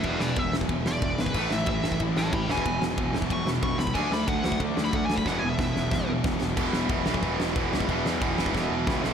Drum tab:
CC |----------------|x---------------|----------------|x---------------|
RD |x---x---x---x---|----x---x---x---|x---x---x---x---|----x---x---x---|
SD |--o---o---o---o-|--o---o---o---o-|--o---o---o---o-|--o---o---o---o-|
BD |o---o--oo---o--o|o---o--oo---o--o|o---o--oo---o--o|o---o--oo---o--o|

CC |----------------|x---x---x---x---|x---x-----------|
RD |----------------|----------------|----------------|
SD |o---o-o-o---o-o-|--o---o---o---o-|--o---o-o---o-o-|
BD |o---o---o---o---|o---o--oo---o--o|o---o--oo---o---|